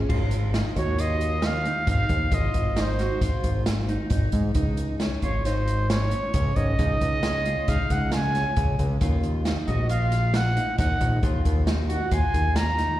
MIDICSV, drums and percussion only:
0, 0, Header, 1, 2, 480
1, 0, Start_track
1, 0, Tempo, 445104
1, 100, Time_signature, 5, 2, 24, 8
1, 14018, End_track
2, 0, Start_track
2, 0, Title_t, "Drums"
2, 102, Note_on_c, 9, 36, 85
2, 103, Note_on_c, 9, 49, 72
2, 210, Note_off_c, 9, 36, 0
2, 211, Note_off_c, 9, 49, 0
2, 333, Note_on_c, 9, 42, 49
2, 441, Note_off_c, 9, 42, 0
2, 582, Note_on_c, 9, 38, 83
2, 582, Note_on_c, 9, 42, 60
2, 690, Note_off_c, 9, 38, 0
2, 690, Note_off_c, 9, 42, 0
2, 822, Note_on_c, 9, 36, 48
2, 823, Note_on_c, 9, 42, 51
2, 930, Note_off_c, 9, 36, 0
2, 930, Note_off_c, 9, 42, 0
2, 1061, Note_on_c, 9, 42, 67
2, 1169, Note_off_c, 9, 42, 0
2, 1302, Note_on_c, 9, 42, 54
2, 1410, Note_off_c, 9, 42, 0
2, 1533, Note_on_c, 9, 38, 97
2, 1533, Note_on_c, 9, 42, 67
2, 1641, Note_off_c, 9, 38, 0
2, 1641, Note_off_c, 9, 42, 0
2, 1782, Note_on_c, 9, 42, 47
2, 1890, Note_off_c, 9, 42, 0
2, 2017, Note_on_c, 9, 42, 68
2, 2020, Note_on_c, 9, 36, 92
2, 2125, Note_off_c, 9, 42, 0
2, 2127, Note_off_c, 9, 36, 0
2, 2255, Note_on_c, 9, 42, 50
2, 2261, Note_on_c, 9, 36, 74
2, 2363, Note_off_c, 9, 42, 0
2, 2368, Note_off_c, 9, 36, 0
2, 2496, Note_on_c, 9, 42, 70
2, 2500, Note_on_c, 9, 36, 86
2, 2604, Note_off_c, 9, 42, 0
2, 2608, Note_off_c, 9, 36, 0
2, 2739, Note_on_c, 9, 42, 51
2, 2741, Note_on_c, 9, 36, 63
2, 2847, Note_off_c, 9, 42, 0
2, 2849, Note_off_c, 9, 36, 0
2, 2981, Note_on_c, 9, 38, 85
2, 2981, Note_on_c, 9, 42, 68
2, 3089, Note_off_c, 9, 38, 0
2, 3089, Note_off_c, 9, 42, 0
2, 3222, Note_on_c, 9, 38, 26
2, 3222, Note_on_c, 9, 42, 49
2, 3330, Note_off_c, 9, 38, 0
2, 3330, Note_off_c, 9, 42, 0
2, 3466, Note_on_c, 9, 36, 87
2, 3466, Note_on_c, 9, 38, 27
2, 3466, Note_on_c, 9, 42, 77
2, 3574, Note_off_c, 9, 36, 0
2, 3574, Note_off_c, 9, 38, 0
2, 3574, Note_off_c, 9, 42, 0
2, 3706, Note_on_c, 9, 36, 65
2, 3706, Note_on_c, 9, 42, 61
2, 3813, Note_off_c, 9, 42, 0
2, 3814, Note_off_c, 9, 36, 0
2, 3947, Note_on_c, 9, 38, 107
2, 3947, Note_on_c, 9, 42, 84
2, 4055, Note_off_c, 9, 38, 0
2, 4055, Note_off_c, 9, 42, 0
2, 4189, Note_on_c, 9, 42, 51
2, 4297, Note_off_c, 9, 42, 0
2, 4420, Note_on_c, 9, 42, 76
2, 4429, Note_on_c, 9, 36, 94
2, 4528, Note_off_c, 9, 42, 0
2, 4537, Note_off_c, 9, 36, 0
2, 4659, Note_on_c, 9, 42, 56
2, 4668, Note_on_c, 9, 36, 65
2, 4766, Note_off_c, 9, 42, 0
2, 4776, Note_off_c, 9, 36, 0
2, 4901, Note_on_c, 9, 42, 66
2, 4910, Note_on_c, 9, 36, 90
2, 5009, Note_off_c, 9, 42, 0
2, 5018, Note_off_c, 9, 36, 0
2, 5145, Note_on_c, 9, 42, 54
2, 5253, Note_off_c, 9, 42, 0
2, 5389, Note_on_c, 9, 38, 77
2, 5389, Note_on_c, 9, 42, 63
2, 5496, Note_off_c, 9, 38, 0
2, 5496, Note_off_c, 9, 42, 0
2, 5631, Note_on_c, 9, 42, 44
2, 5636, Note_on_c, 9, 36, 53
2, 5739, Note_off_c, 9, 42, 0
2, 5743, Note_off_c, 9, 36, 0
2, 5878, Note_on_c, 9, 38, 28
2, 5878, Note_on_c, 9, 42, 67
2, 5986, Note_off_c, 9, 38, 0
2, 5986, Note_off_c, 9, 42, 0
2, 6119, Note_on_c, 9, 42, 55
2, 6227, Note_off_c, 9, 42, 0
2, 6360, Note_on_c, 9, 38, 101
2, 6360, Note_on_c, 9, 42, 71
2, 6468, Note_off_c, 9, 38, 0
2, 6468, Note_off_c, 9, 42, 0
2, 6592, Note_on_c, 9, 42, 51
2, 6699, Note_off_c, 9, 42, 0
2, 6833, Note_on_c, 9, 42, 76
2, 6838, Note_on_c, 9, 36, 89
2, 6941, Note_off_c, 9, 42, 0
2, 6946, Note_off_c, 9, 36, 0
2, 7075, Note_on_c, 9, 42, 50
2, 7080, Note_on_c, 9, 36, 67
2, 7183, Note_off_c, 9, 42, 0
2, 7187, Note_off_c, 9, 36, 0
2, 7319, Note_on_c, 9, 42, 60
2, 7322, Note_on_c, 9, 36, 92
2, 7427, Note_off_c, 9, 42, 0
2, 7430, Note_off_c, 9, 36, 0
2, 7561, Note_on_c, 9, 42, 52
2, 7562, Note_on_c, 9, 36, 58
2, 7669, Note_off_c, 9, 42, 0
2, 7670, Note_off_c, 9, 36, 0
2, 7795, Note_on_c, 9, 38, 95
2, 7795, Note_on_c, 9, 42, 68
2, 7903, Note_off_c, 9, 38, 0
2, 7903, Note_off_c, 9, 42, 0
2, 8037, Note_on_c, 9, 42, 48
2, 8145, Note_off_c, 9, 42, 0
2, 8280, Note_on_c, 9, 38, 28
2, 8280, Note_on_c, 9, 42, 76
2, 8283, Note_on_c, 9, 36, 87
2, 8388, Note_off_c, 9, 38, 0
2, 8388, Note_off_c, 9, 42, 0
2, 8391, Note_off_c, 9, 36, 0
2, 8520, Note_on_c, 9, 42, 56
2, 8523, Note_on_c, 9, 36, 59
2, 8628, Note_off_c, 9, 42, 0
2, 8631, Note_off_c, 9, 36, 0
2, 8752, Note_on_c, 9, 38, 94
2, 8752, Note_on_c, 9, 42, 76
2, 8860, Note_off_c, 9, 38, 0
2, 8860, Note_off_c, 9, 42, 0
2, 9001, Note_on_c, 9, 38, 26
2, 9001, Note_on_c, 9, 42, 49
2, 9109, Note_off_c, 9, 38, 0
2, 9109, Note_off_c, 9, 42, 0
2, 9236, Note_on_c, 9, 42, 69
2, 9242, Note_on_c, 9, 36, 96
2, 9343, Note_off_c, 9, 42, 0
2, 9350, Note_off_c, 9, 36, 0
2, 9478, Note_on_c, 9, 42, 55
2, 9482, Note_on_c, 9, 36, 67
2, 9586, Note_off_c, 9, 42, 0
2, 9589, Note_off_c, 9, 36, 0
2, 9715, Note_on_c, 9, 42, 69
2, 9721, Note_on_c, 9, 36, 92
2, 9823, Note_off_c, 9, 42, 0
2, 9829, Note_off_c, 9, 36, 0
2, 9957, Note_on_c, 9, 42, 48
2, 10065, Note_off_c, 9, 42, 0
2, 10194, Note_on_c, 9, 38, 77
2, 10194, Note_on_c, 9, 42, 63
2, 10302, Note_off_c, 9, 38, 0
2, 10302, Note_off_c, 9, 42, 0
2, 10434, Note_on_c, 9, 42, 41
2, 10438, Note_on_c, 9, 36, 54
2, 10542, Note_off_c, 9, 42, 0
2, 10546, Note_off_c, 9, 36, 0
2, 10668, Note_on_c, 9, 42, 74
2, 10776, Note_off_c, 9, 42, 0
2, 10910, Note_on_c, 9, 38, 30
2, 10910, Note_on_c, 9, 42, 50
2, 11017, Note_off_c, 9, 38, 0
2, 11017, Note_off_c, 9, 42, 0
2, 11147, Note_on_c, 9, 38, 96
2, 11147, Note_on_c, 9, 42, 76
2, 11255, Note_off_c, 9, 38, 0
2, 11255, Note_off_c, 9, 42, 0
2, 11394, Note_on_c, 9, 42, 51
2, 11502, Note_off_c, 9, 42, 0
2, 11628, Note_on_c, 9, 38, 28
2, 11628, Note_on_c, 9, 42, 84
2, 11633, Note_on_c, 9, 36, 98
2, 11736, Note_off_c, 9, 38, 0
2, 11736, Note_off_c, 9, 42, 0
2, 11741, Note_off_c, 9, 36, 0
2, 11869, Note_on_c, 9, 42, 57
2, 11872, Note_on_c, 9, 36, 67
2, 11977, Note_off_c, 9, 42, 0
2, 11980, Note_off_c, 9, 36, 0
2, 12108, Note_on_c, 9, 42, 72
2, 12111, Note_on_c, 9, 36, 97
2, 12216, Note_off_c, 9, 42, 0
2, 12219, Note_off_c, 9, 36, 0
2, 12350, Note_on_c, 9, 36, 72
2, 12350, Note_on_c, 9, 42, 55
2, 12458, Note_off_c, 9, 36, 0
2, 12458, Note_off_c, 9, 42, 0
2, 12585, Note_on_c, 9, 38, 92
2, 12585, Note_on_c, 9, 42, 65
2, 12693, Note_off_c, 9, 38, 0
2, 12693, Note_off_c, 9, 42, 0
2, 12829, Note_on_c, 9, 42, 54
2, 12936, Note_off_c, 9, 42, 0
2, 13063, Note_on_c, 9, 42, 75
2, 13067, Note_on_c, 9, 36, 90
2, 13171, Note_off_c, 9, 42, 0
2, 13174, Note_off_c, 9, 36, 0
2, 13306, Note_on_c, 9, 36, 58
2, 13309, Note_on_c, 9, 42, 57
2, 13414, Note_off_c, 9, 36, 0
2, 13417, Note_off_c, 9, 42, 0
2, 13542, Note_on_c, 9, 38, 99
2, 13542, Note_on_c, 9, 42, 69
2, 13650, Note_off_c, 9, 38, 0
2, 13650, Note_off_c, 9, 42, 0
2, 13786, Note_on_c, 9, 38, 29
2, 13786, Note_on_c, 9, 42, 48
2, 13894, Note_off_c, 9, 38, 0
2, 13894, Note_off_c, 9, 42, 0
2, 14018, End_track
0, 0, End_of_file